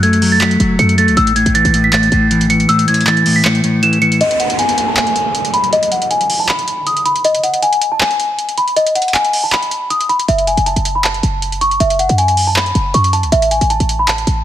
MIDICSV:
0, 0, Header, 1, 6, 480
1, 0, Start_track
1, 0, Tempo, 379747
1, 1479, Time_signature, 4, 2, 24, 8
1, 18255, End_track
2, 0, Start_track
2, 0, Title_t, "Celesta"
2, 0, Program_c, 0, 8
2, 37, Note_on_c, 0, 92, 80
2, 383, Note_off_c, 0, 92, 0
2, 405, Note_on_c, 0, 93, 77
2, 495, Note_off_c, 0, 93, 0
2, 999, Note_on_c, 0, 97, 83
2, 1188, Note_off_c, 0, 97, 0
2, 1237, Note_on_c, 0, 93, 82
2, 1427, Note_off_c, 0, 93, 0
2, 1479, Note_on_c, 0, 88, 107
2, 1668, Note_off_c, 0, 88, 0
2, 1718, Note_on_c, 0, 92, 78
2, 1908, Note_off_c, 0, 92, 0
2, 1957, Note_on_c, 0, 93, 93
2, 2303, Note_off_c, 0, 93, 0
2, 2327, Note_on_c, 0, 95, 82
2, 2415, Note_off_c, 0, 95, 0
2, 2438, Note_on_c, 0, 93, 91
2, 3115, Note_off_c, 0, 93, 0
2, 3159, Note_on_c, 0, 97, 82
2, 3348, Note_off_c, 0, 97, 0
2, 3398, Note_on_c, 0, 88, 103
2, 3588, Note_off_c, 0, 88, 0
2, 3639, Note_on_c, 0, 92, 79
2, 3829, Note_off_c, 0, 92, 0
2, 3880, Note_on_c, 0, 93, 80
2, 4225, Note_off_c, 0, 93, 0
2, 4245, Note_on_c, 0, 95, 76
2, 4334, Note_off_c, 0, 95, 0
2, 4359, Note_on_c, 0, 97, 80
2, 4810, Note_off_c, 0, 97, 0
2, 4839, Note_on_c, 0, 100, 87
2, 5028, Note_off_c, 0, 100, 0
2, 5078, Note_on_c, 0, 97, 93
2, 5268, Note_off_c, 0, 97, 0
2, 5320, Note_on_c, 0, 75, 118
2, 5509, Note_off_c, 0, 75, 0
2, 5559, Note_on_c, 0, 78, 75
2, 5748, Note_off_c, 0, 78, 0
2, 5799, Note_on_c, 0, 80, 88
2, 6144, Note_off_c, 0, 80, 0
2, 6166, Note_on_c, 0, 81, 69
2, 6255, Note_off_c, 0, 81, 0
2, 6277, Note_on_c, 0, 80, 83
2, 6954, Note_off_c, 0, 80, 0
2, 6997, Note_on_c, 0, 83, 84
2, 7187, Note_off_c, 0, 83, 0
2, 7239, Note_on_c, 0, 75, 96
2, 7429, Note_off_c, 0, 75, 0
2, 7478, Note_on_c, 0, 78, 76
2, 7668, Note_off_c, 0, 78, 0
2, 7718, Note_on_c, 0, 80, 80
2, 8063, Note_off_c, 0, 80, 0
2, 8085, Note_on_c, 0, 81, 80
2, 8174, Note_off_c, 0, 81, 0
2, 8199, Note_on_c, 0, 83, 73
2, 8650, Note_off_c, 0, 83, 0
2, 8679, Note_on_c, 0, 87, 83
2, 8868, Note_off_c, 0, 87, 0
2, 8918, Note_on_c, 0, 83, 83
2, 9108, Note_off_c, 0, 83, 0
2, 9159, Note_on_c, 0, 75, 104
2, 9349, Note_off_c, 0, 75, 0
2, 9399, Note_on_c, 0, 78, 80
2, 9588, Note_off_c, 0, 78, 0
2, 9638, Note_on_c, 0, 80, 91
2, 9983, Note_off_c, 0, 80, 0
2, 10006, Note_on_c, 0, 81, 83
2, 10095, Note_off_c, 0, 81, 0
2, 10118, Note_on_c, 0, 80, 88
2, 10795, Note_off_c, 0, 80, 0
2, 10840, Note_on_c, 0, 83, 81
2, 11029, Note_off_c, 0, 83, 0
2, 11078, Note_on_c, 0, 75, 99
2, 11268, Note_off_c, 0, 75, 0
2, 11319, Note_on_c, 0, 78, 75
2, 11508, Note_off_c, 0, 78, 0
2, 11559, Note_on_c, 0, 80, 91
2, 11904, Note_off_c, 0, 80, 0
2, 11926, Note_on_c, 0, 81, 78
2, 12015, Note_off_c, 0, 81, 0
2, 12038, Note_on_c, 0, 83, 83
2, 12490, Note_off_c, 0, 83, 0
2, 12517, Note_on_c, 0, 87, 78
2, 12707, Note_off_c, 0, 87, 0
2, 12757, Note_on_c, 0, 83, 82
2, 12947, Note_off_c, 0, 83, 0
2, 12999, Note_on_c, 0, 76, 117
2, 13188, Note_off_c, 0, 76, 0
2, 13240, Note_on_c, 0, 80, 82
2, 13429, Note_off_c, 0, 80, 0
2, 13478, Note_on_c, 0, 81, 91
2, 13823, Note_off_c, 0, 81, 0
2, 13845, Note_on_c, 0, 83, 78
2, 13935, Note_off_c, 0, 83, 0
2, 13959, Note_on_c, 0, 81, 81
2, 14636, Note_off_c, 0, 81, 0
2, 14677, Note_on_c, 0, 85, 81
2, 14867, Note_off_c, 0, 85, 0
2, 14918, Note_on_c, 0, 76, 101
2, 15108, Note_off_c, 0, 76, 0
2, 15158, Note_on_c, 0, 78, 72
2, 15348, Note_off_c, 0, 78, 0
2, 15397, Note_on_c, 0, 80, 76
2, 15743, Note_off_c, 0, 80, 0
2, 15765, Note_on_c, 0, 81, 77
2, 15855, Note_off_c, 0, 81, 0
2, 15879, Note_on_c, 0, 83, 74
2, 16330, Note_off_c, 0, 83, 0
2, 16358, Note_on_c, 0, 85, 81
2, 16548, Note_off_c, 0, 85, 0
2, 16597, Note_on_c, 0, 81, 80
2, 16787, Note_off_c, 0, 81, 0
2, 16839, Note_on_c, 0, 76, 106
2, 17028, Note_off_c, 0, 76, 0
2, 17078, Note_on_c, 0, 80, 77
2, 17267, Note_off_c, 0, 80, 0
2, 17318, Note_on_c, 0, 81, 91
2, 17663, Note_off_c, 0, 81, 0
2, 17686, Note_on_c, 0, 83, 81
2, 17775, Note_off_c, 0, 83, 0
2, 17797, Note_on_c, 0, 81, 90
2, 18255, Note_off_c, 0, 81, 0
2, 18255, End_track
3, 0, Start_track
3, 0, Title_t, "Clean electric guitar"
3, 0, Program_c, 1, 27
3, 0, Note_on_c, 1, 54, 71
3, 39, Note_on_c, 1, 57, 88
3, 265, Note_off_c, 1, 54, 0
3, 280, Note_on_c, 1, 54, 83
3, 502, Note_off_c, 1, 54, 0
3, 517, Note_on_c, 1, 54, 91
3, 750, Note_off_c, 1, 54, 0
3, 765, Note_on_c, 1, 54, 79
3, 983, Note_off_c, 1, 57, 0
3, 998, Note_on_c, 1, 57, 81
3, 1230, Note_off_c, 1, 57, 0
3, 1245, Note_on_c, 1, 57, 89
3, 1473, Note_on_c, 1, 45, 92
3, 1482, Note_off_c, 1, 54, 0
3, 1482, Note_off_c, 1, 57, 0
3, 1697, Note_off_c, 1, 45, 0
3, 1713, Note_on_c, 1, 45, 80
3, 1952, Note_on_c, 1, 52, 86
3, 2185, Note_off_c, 1, 45, 0
3, 2201, Note_on_c, 1, 45, 77
3, 2417, Note_off_c, 1, 45, 0
3, 2432, Note_on_c, 1, 45, 91
3, 2667, Note_off_c, 1, 45, 0
3, 2682, Note_on_c, 1, 45, 86
3, 2902, Note_off_c, 1, 52, 0
3, 2917, Note_on_c, 1, 52, 83
3, 3139, Note_off_c, 1, 52, 0
3, 3154, Note_on_c, 1, 52, 77
3, 3379, Note_off_c, 1, 45, 0
3, 3394, Note_on_c, 1, 45, 93
3, 3631, Note_off_c, 1, 45, 0
3, 3646, Note_on_c, 1, 45, 79
3, 3864, Note_off_c, 1, 52, 0
3, 3879, Note_on_c, 1, 52, 88
3, 4109, Note_off_c, 1, 45, 0
3, 4124, Note_on_c, 1, 45, 82
3, 4345, Note_off_c, 1, 45, 0
3, 4360, Note_on_c, 1, 45, 91
3, 4586, Note_off_c, 1, 45, 0
3, 4602, Note_on_c, 1, 45, 84
3, 4828, Note_off_c, 1, 52, 0
3, 4843, Note_on_c, 1, 52, 85
3, 5061, Note_off_c, 1, 52, 0
3, 5076, Note_on_c, 1, 52, 76
3, 5317, Note_off_c, 1, 52, 0
3, 5320, Note_off_c, 1, 45, 0
3, 18255, End_track
4, 0, Start_track
4, 0, Title_t, "808-style bass"
4, 0, Program_c, 2, 38
4, 0, Note_on_c, 2, 42, 101
4, 725, Note_off_c, 2, 42, 0
4, 759, Note_on_c, 2, 30, 101
4, 989, Note_off_c, 2, 30, 0
4, 998, Note_on_c, 2, 42, 106
4, 1366, Note_on_c, 2, 37, 95
4, 1385, Note_off_c, 2, 42, 0
4, 1473, Note_off_c, 2, 37, 0
4, 1479, Note_on_c, 2, 33, 116
4, 1831, Note_off_c, 2, 33, 0
4, 1845, Note_on_c, 2, 33, 104
4, 2076, Note_off_c, 2, 33, 0
4, 2086, Note_on_c, 2, 33, 102
4, 2655, Note_off_c, 2, 33, 0
4, 2678, Note_on_c, 2, 33, 101
4, 3370, Note_off_c, 2, 33, 0
4, 12999, Note_on_c, 2, 30, 111
4, 13351, Note_off_c, 2, 30, 0
4, 13365, Note_on_c, 2, 30, 102
4, 13596, Note_off_c, 2, 30, 0
4, 13606, Note_on_c, 2, 30, 97
4, 14175, Note_off_c, 2, 30, 0
4, 14198, Note_on_c, 2, 30, 101
4, 14889, Note_off_c, 2, 30, 0
4, 14918, Note_on_c, 2, 30, 113
4, 15271, Note_off_c, 2, 30, 0
4, 15286, Note_on_c, 2, 42, 99
4, 16085, Note_off_c, 2, 42, 0
4, 16119, Note_on_c, 2, 30, 104
4, 16349, Note_off_c, 2, 30, 0
4, 16358, Note_on_c, 2, 42, 105
4, 16725, Note_on_c, 2, 37, 98
4, 16744, Note_off_c, 2, 42, 0
4, 16833, Note_off_c, 2, 37, 0
4, 16838, Note_on_c, 2, 33, 116
4, 17191, Note_off_c, 2, 33, 0
4, 17205, Note_on_c, 2, 33, 102
4, 17436, Note_off_c, 2, 33, 0
4, 17445, Note_on_c, 2, 33, 100
4, 18015, Note_off_c, 2, 33, 0
4, 18038, Note_on_c, 2, 33, 99
4, 18255, Note_off_c, 2, 33, 0
4, 18255, End_track
5, 0, Start_track
5, 0, Title_t, "Downlifter"
5, 0, Program_c, 3, 103
5, 5318, Note_on_c, 3, 60, 84
5, 9158, Note_off_c, 3, 60, 0
5, 18255, End_track
6, 0, Start_track
6, 0, Title_t, "Drums"
6, 39, Note_on_c, 9, 42, 75
6, 165, Note_off_c, 9, 42, 0
6, 166, Note_on_c, 9, 42, 56
6, 279, Note_on_c, 9, 46, 92
6, 292, Note_off_c, 9, 42, 0
6, 405, Note_off_c, 9, 46, 0
6, 518, Note_on_c, 9, 42, 90
6, 519, Note_on_c, 9, 39, 124
6, 645, Note_off_c, 9, 39, 0
6, 645, Note_off_c, 9, 42, 0
6, 646, Note_on_c, 9, 42, 52
6, 759, Note_off_c, 9, 42, 0
6, 759, Note_on_c, 9, 42, 70
6, 885, Note_off_c, 9, 42, 0
6, 999, Note_on_c, 9, 42, 75
6, 1125, Note_off_c, 9, 42, 0
6, 1126, Note_on_c, 9, 42, 56
6, 1238, Note_off_c, 9, 42, 0
6, 1238, Note_on_c, 9, 42, 70
6, 1365, Note_off_c, 9, 42, 0
6, 1366, Note_on_c, 9, 42, 43
6, 1478, Note_off_c, 9, 42, 0
6, 1478, Note_on_c, 9, 42, 86
6, 1605, Note_off_c, 9, 42, 0
6, 1606, Note_on_c, 9, 42, 64
6, 1718, Note_off_c, 9, 42, 0
6, 1718, Note_on_c, 9, 42, 82
6, 1845, Note_off_c, 9, 42, 0
6, 1846, Note_on_c, 9, 42, 58
6, 1959, Note_off_c, 9, 42, 0
6, 1959, Note_on_c, 9, 42, 79
6, 2085, Note_off_c, 9, 42, 0
6, 2086, Note_on_c, 9, 42, 57
6, 2199, Note_off_c, 9, 42, 0
6, 2199, Note_on_c, 9, 42, 90
6, 2325, Note_off_c, 9, 42, 0
6, 2439, Note_on_c, 9, 39, 127
6, 2439, Note_on_c, 9, 42, 89
6, 2565, Note_off_c, 9, 39, 0
6, 2565, Note_off_c, 9, 42, 0
6, 2566, Note_on_c, 9, 42, 51
6, 2679, Note_off_c, 9, 42, 0
6, 2679, Note_on_c, 9, 42, 68
6, 2805, Note_off_c, 9, 42, 0
6, 2918, Note_on_c, 9, 42, 77
6, 3045, Note_off_c, 9, 42, 0
6, 3046, Note_on_c, 9, 42, 56
6, 3158, Note_off_c, 9, 42, 0
6, 3158, Note_on_c, 9, 42, 70
6, 3285, Note_off_c, 9, 42, 0
6, 3285, Note_on_c, 9, 42, 46
6, 3398, Note_off_c, 9, 42, 0
6, 3398, Note_on_c, 9, 42, 90
6, 3525, Note_off_c, 9, 42, 0
6, 3525, Note_on_c, 9, 42, 64
6, 3638, Note_off_c, 9, 42, 0
6, 3638, Note_on_c, 9, 42, 84
6, 3718, Note_off_c, 9, 42, 0
6, 3718, Note_on_c, 9, 42, 65
6, 3798, Note_off_c, 9, 42, 0
6, 3798, Note_on_c, 9, 42, 50
6, 3878, Note_off_c, 9, 42, 0
6, 3878, Note_on_c, 9, 39, 95
6, 3878, Note_on_c, 9, 42, 79
6, 4004, Note_off_c, 9, 39, 0
6, 4005, Note_off_c, 9, 42, 0
6, 4005, Note_on_c, 9, 42, 54
6, 4118, Note_on_c, 9, 46, 87
6, 4132, Note_off_c, 9, 42, 0
6, 4245, Note_off_c, 9, 46, 0
6, 4358, Note_on_c, 9, 39, 125
6, 4358, Note_on_c, 9, 42, 90
6, 4485, Note_off_c, 9, 39, 0
6, 4485, Note_off_c, 9, 42, 0
6, 4486, Note_on_c, 9, 42, 50
6, 4598, Note_off_c, 9, 42, 0
6, 4598, Note_on_c, 9, 42, 68
6, 4725, Note_off_c, 9, 42, 0
6, 4838, Note_on_c, 9, 42, 76
6, 4965, Note_off_c, 9, 42, 0
6, 4965, Note_on_c, 9, 42, 58
6, 5078, Note_off_c, 9, 42, 0
6, 5078, Note_on_c, 9, 42, 44
6, 5205, Note_off_c, 9, 42, 0
6, 5205, Note_on_c, 9, 42, 77
6, 5318, Note_off_c, 9, 42, 0
6, 5318, Note_on_c, 9, 42, 83
6, 5444, Note_off_c, 9, 42, 0
6, 5445, Note_on_c, 9, 42, 61
6, 5558, Note_off_c, 9, 42, 0
6, 5558, Note_on_c, 9, 42, 79
6, 5684, Note_off_c, 9, 42, 0
6, 5685, Note_on_c, 9, 42, 56
6, 5798, Note_off_c, 9, 42, 0
6, 5798, Note_on_c, 9, 42, 75
6, 5925, Note_off_c, 9, 42, 0
6, 5925, Note_on_c, 9, 42, 53
6, 6038, Note_off_c, 9, 42, 0
6, 6038, Note_on_c, 9, 42, 88
6, 6165, Note_off_c, 9, 42, 0
6, 6278, Note_on_c, 9, 42, 86
6, 6279, Note_on_c, 9, 39, 122
6, 6405, Note_off_c, 9, 39, 0
6, 6405, Note_off_c, 9, 42, 0
6, 6405, Note_on_c, 9, 42, 49
6, 6518, Note_off_c, 9, 42, 0
6, 6518, Note_on_c, 9, 42, 67
6, 6645, Note_off_c, 9, 42, 0
6, 6758, Note_on_c, 9, 42, 75
6, 6885, Note_off_c, 9, 42, 0
6, 6886, Note_on_c, 9, 42, 56
6, 6998, Note_off_c, 9, 42, 0
6, 6998, Note_on_c, 9, 42, 68
6, 7125, Note_off_c, 9, 42, 0
6, 7126, Note_on_c, 9, 42, 43
6, 7238, Note_off_c, 9, 42, 0
6, 7238, Note_on_c, 9, 42, 86
6, 7365, Note_off_c, 9, 42, 0
6, 7366, Note_on_c, 9, 42, 63
6, 7478, Note_off_c, 9, 42, 0
6, 7478, Note_on_c, 9, 42, 79
6, 7605, Note_off_c, 9, 42, 0
6, 7606, Note_on_c, 9, 42, 55
6, 7718, Note_off_c, 9, 42, 0
6, 7718, Note_on_c, 9, 42, 73
6, 7845, Note_off_c, 9, 42, 0
6, 7846, Note_on_c, 9, 42, 53
6, 7958, Note_on_c, 9, 46, 84
6, 7972, Note_off_c, 9, 42, 0
6, 8085, Note_off_c, 9, 46, 0
6, 8198, Note_on_c, 9, 42, 88
6, 8199, Note_on_c, 9, 39, 125
6, 8325, Note_off_c, 9, 39, 0
6, 8325, Note_off_c, 9, 42, 0
6, 8325, Note_on_c, 9, 42, 49
6, 8438, Note_off_c, 9, 42, 0
6, 8438, Note_on_c, 9, 42, 68
6, 8565, Note_off_c, 9, 42, 0
6, 8678, Note_on_c, 9, 42, 71
6, 8805, Note_off_c, 9, 42, 0
6, 8806, Note_on_c, 9, 42, 55
6, 8918, Note_off_c, 9, 42, 0
6, 8918, Note_on_c, 9, 42, 68
6, 9044, Note_off_c, 9, 42, 0
6, 9045, Note_on_c, 9, 42, 43
6, 9158, Note_off_c, 9, 42, 0
6, 9158, Note_on_c, 9, 42, 88
6, 9284, Note_off_c, 9, 42, 0
6, 9285, Note_on_c, 9, 42, 63
6, 9398, Note_off_c, 9, 42, 0
6, 9398, Note_on_c, 9, 42, 79
6, 9525, Note_off_c, 9, 42, 0
6, 9525, Note_on_c, 9, 42, 59
6, 9638, Note_off_c, 9, 42, 0
6, 9638, Note_on_c, 9, 42, 72
6, 9765, Note_off_c, 9, 42, 0
6, 9765, Note_on_c, 9, 42, 55
6, 9878, Note_off_c, 9, 42, 0
6, 9878, Note_on_c, 9, 42, 91
6, 10005, Note_off_c, 9, 42, 0
6, 10119, Note_on_c, 9, 39, 123
6, 10119, Note_on_c, 9, 42, 88
6, 10245, Note_off_c, 9, 39, 0
6, 10245, Note_off_c, 9, 42, 0
6, 10246, Note_on_c, 9, 42, 50
6, 10359, Note_off_c, 9, 42, 0
6, 10359, Note_on_c, 9, 42, 66
6, 10485, Note_off_c, 9, 42, 0
6, 10599, Note_on_c, 9, 42, 74
6, 10725, Note_off_c, 9, 42, 0
6, 10726, Note_on_c, 9, 42, 54
6, 10839, Note_off_c, 9, 42, 0
6, 10839, Note_on_c, 9, 42, 67
6, 10965, Note_off_c, 9, 42, 0
6, 10966, Note_on_c, 9, 42, 43
6, 11079, Note_off_c, 9, 42, 0
6, 11079, Note_on_c, 9, 42, 88
6, 11205, Note_off_c, 9, 42, 0
6, 11206, Note_on_c, 9, 42, 65
6, 11319, Note_off_c, 9, 42, 0
6, 11319, Note_on_c, 9, 42, 78
6, 11399, Note_off_c, 9, 42, 0
6, 11399, Note_on_c, 9, 42, 64
6, 11479, Note_off_c, 9, 42, 0
6, 11479, Note_on_c, 9, 42, 46
6, 11558, Note_on_c, 9, 39, 92
6, 11559, Note_off_c, 9, 42, 0
6, 11559, Note_on_c, 9, 42, 75
6, 11685, Note_off_c, 9, 39, 0
6, 11685, Note_off_c, 9, 42, 0
6, 11686, Note_on_c, 9, 42, 55
6, 11798, Note_on_c, 9, 46, 86
6, 11812, Note_off_c, 9, 42, 0
6, 11925, Note_off_c, 9, 46, 0
6, 12039, Note_on_c, 9, 39, 123
6, 12039, Note_on_c, 9, 42, 86
6, 12165, Note_off_c, 9, 39, 0
6, 12165, Note_off_c, 9, 42, 0
6, 12165, Note_on_c, 9, 42, 48
6, 12278, Note_off_c, 9, 42, 0
6, 12278, Note_on_c, 9, 42, 68
6, 12404, Note_off_c, 9, 42, 0
6, 12518, Note_on_c, 9, 42, 73
6, 12645, Note_off_c, 9, 42, 0
6, 12646, Note_on_c, 9, 42, 53
6, 12759, Note_off_c, 9, 42, 0
6, 12759, Note_on_c, 9, 42, 42
6, 12885, Note_off_c, 9, 42, 0
6, 12886, Note_on_c, 9, 42, 70
6, 12999, Note_off_c, 9, 42, 0
6, 12999, Note_on_c, 9, 42, 86
6, 13125, Note_off_c, 9, 42, 0
6, 13126, Note_on_c, 9, 42, 64
6, 13239, Note_off_c, 9, 42, 0
6, 13239, Note_on_c, 9, 42, 78
6, 13365, Note_off_c, 9, 42, 0
6, 13366, Note_on_c, 9, 42, 57
6, 13479, Note_off_c, 9, 42, 0
6, 13479, Note_on_c, 9, 42, 74
6, 13605, Note_off_c, 9, 42, 0
6, 13606, Note_on_c, 9, 42, 54
6, 13718, Note_off_c, 9, 42, 0
6, 13718, Note_on_c, 9, 42, 88
6, 13845, Note_off_c, 9, 42, 0
6, 13958, Note_on_c, 9, 42, 90
6, 13959, Note_on_c, 9, 39, 124
6, 14085, Note_off_c, 9, 39, 0
6, 14085, Note_off_c, 9, 42, 0
6, 14086, Note_on_c, 9, 42, 49
6, 14198, Note_off_c, 9, 42, 0
6, 14198, Note_on_c, 9, 42, 65
6, 14325, Note_off_c, 9, 42, 0
6, 14438, Note_on_c, 9, 42, 73
6, 14565, Note_off_c, 9, 42, 0
6, 14566, Note_on_c, 9, 42, 53
6, 14678, Note_off_c, 9, 42, 0
6, 14678, Note_on_c, 9, 42, 67
6, 14805, Note_off_c, 9, 42, 0
6, 14805, Note_on_c, 9, 42, 45
6, 14918, Note_off_c, 9, 42, 0
6, 14918, Note_on_c, 9, 42, 88
6, 15045, Note_off_c, 9, 42, 0
6, 15045, Note_on_c, 9, 42, 61
6, 15158, Note_off_c, 9, 42, 0
6, 15158, Note_on_c, 9, 42, 76
6, 15285, Note_off_c, 9, 42, 0
6, 15285, Note_on_c, 9, 42, 56
6, 15398, Note_off_c, 9, 42, 0
6, 15398, Note_on_c, 9, 42, 74
6, 15524, Note_off_c, 9, 42, 0
6, 15525, Note_on_c, 9, 42, 53
6, 15638, Note_on_c, 9, 46, 86
6, 15651, Note_off_c, 9, 42, 0
6, 15764, Note_off_c, 9, 46, 0
6, 15878, Note_on_c, 9, 39, 117
6, 16005, Note_off_c, 9, 39, 0
6, 16005, Note_on_c, 9, 42, 49
6, 16118, Note_off_c, 9, 42, 0
6, 16118, Note_on_c, 9, 42, 65
6, 16244, Note_off_c, 9, 42, 0
6, 16358, Note_on_c, 9, 42, 71
6, 16484, Note_off_c, 9, 42, 0
6, 16485, Note_on_c, 9, 42, 54
6, 16598, Note_off_c, 9, 42, 0
6, 16598, Note_on_c, 9, 42, 68
6, 16724, Note_off_c, 9, 42, 0
6, 16725, Note_on_c, 9, 42, 43
6, 16838, Note_off_c, 9, 42, 0
6, 16838, Note_on_c, 9, 42, 88
6, 16965, Note_off_c, 9, 42, 0
6, 16965, Note_on_c, 9, 42, 62
6, 17078, Note_off_c, 9, 42, 0
6, 17078, Note_on_c, 9, 42, 75
6, 17205, Note_off_c, 9, 42, 0
6, 17205, Note_on_c, 9, 42, 55
6, 17318, Note_off_c, 9, 42, 0
6, 17318, Note_on_c, 9, 42, 73
6, 17444, Note_off_c, 9, 42, 0
6, 17445, Note_on_c, 9, 42, 54
6, 17558, Note_off_c, 9, 42, 0
6, 17558, Note_on_c, 9, 42, 86
6, 17685, Note_off_c, 9, 42, 0
6, 17798, Note_on_c, 9, 42, 90
6, 17799, Note_on_c, 9, 39, 119
6, 17925, Note_off_c, 9, 39, 0
6, 17925, Note_off_c, 9, 42, 0
6, 17925, Note_on_c, 9, 42, 47
6, 18038, Note_off_c, 9, 42, 0
6, 18038, Note_on_c, 9, 42, 66
6, 18165, Note_off_c, 9, 42, 0
6, 18255, End_track
0, 0, End_of_file